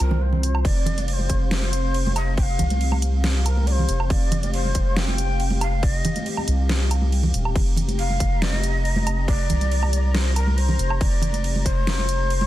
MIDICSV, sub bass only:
0, 0, Header, 1, 2, 480
1, 0, Start_track
1, 0, Tempo, 431655
1, 723, Time_signature, 4, 2, 24, 8
1, 13864, End_track
2, 0, Start_track
2, 0, Title_t, "Sub bass"
2, 0, Program_c, 0, 38
2, 2, Note_on_c, 0, 36, 101
2, 704, Note_off_c, 0, 36, 0
2, 720, Note_on_c, 0, 29, 106
2, 1423, Note_off_c, 0, 29, 0
2, 1442, Note_on_c, 0, 29, 94
2, 2864, Note_off_c, 0, 29, 0
2, 2883, Note_on_c, 0, 36, 97
2, 4305, Note_off_c, 0, 36, 0
2, 4326, Note_on_c, 0, 29, 103
2, 4546, Note_off_c, 0, 29, 0
2, 4561, Note_on_c, 0, 29, 102
2, 5263, Note_off_c, 0, 29, 0
2, 5281, Note_on_c, 0, 29, 96
2, 6703, Note_off_c, 0, 29, 0
2, 7203, Note_on_c, 0, 36, 100
2, 8144, Note_off_c, 0, 36, 0
2, 8165, Note_on_c, 0, 27, 103
2, 8385, Note_off_c, 0, 27, 0
2, 8401, Note_on_c, 0, 29, 104
2, 9104, Note_off_c, 0, 29, 0
2, 9122, Note_on_c, 0, 29, 101
2, 10544, Note_off_c, 0, 29, 0
2, 10565, Note_on_c, 0, 36, 95
2, 11985, Note_off_c, 0, 36, 0
2, 12003, Note_on_c, 0, 29, 99
2, 12225, Note_off_c, 0, 29, 0
2, 12241, Note_on_c, 0, 29, 98
2, 12943, Note_off_c, 0, 29, 0
2, 12962, Note_on_c, 0, 29, 101
2, 13864, Note_off_c, 0, 29, 0
2, 13864, End_track
0, 0, End_of_file